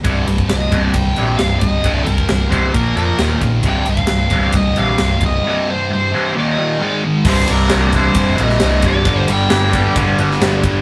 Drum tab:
CC |----------------|----------------|----------------|----------------|
RD |x-x-x-x-x-x-x-x-|x-x-x-x-x-x-x-x-|x-x-x-x-x-x-x-x-|----------------|
SD |----o-------o---|----o-------o---|----o-------o---|----------------|
BD |o--o--o-o-----o-|o--o--o-o-----o-|o--o--o-o-----o-|----------------|

CC |x---------------|----------------|
RD |--x-x-x-x-x-x-x-|x-x-x-x-x-x-x-x-|
SD |----o------oo---|----o------oo---|
BD |o-----o-o-----o-|o-----o-o-----o-|